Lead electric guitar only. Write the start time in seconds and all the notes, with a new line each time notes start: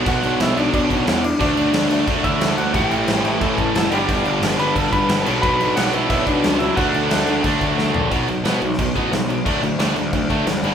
0.07 F#4 F#5
0.42 E4 E5
0.57 D4 D5
0.74 D4 D5
0.90 C#4 C#5
1.24 D4 D5
1.40 D4 D5
2.24 E4 E5
2.58 F#4 F#5
2.75 G4 F#5
2.87 G5
3.42 A4 A5
3.76 A4 A5
3.93 G4 G5
4.60 B4 B5
4.76 A4 A5
4.93 B4 B5
5.42 B4 B5
5.76 F#4 F#5
5.93 E4 E5
6.10 E4 E5
6.26 D4 D5
6.59 E4 E5
6.76 F#4 F#5